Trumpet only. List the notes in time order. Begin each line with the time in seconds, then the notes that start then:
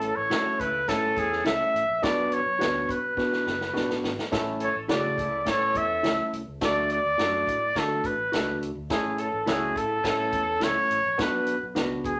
Already playing: A4
0.16 C#5
0.60 B4
0.89 A4
1.18 G#4
1.46 E5
2.03 D5
2.33 C#5
2.90 B4
4.64 C#5
4.90 D5
5.49 C#5
5.77 E5
6.64 D5
6.92 D5
7.78 A4
8.06 B4
8.91 G#4
9.20 A4
9.49 G#4
9.77 A4
10.63 C#5
11.21 B4
12.06 G#4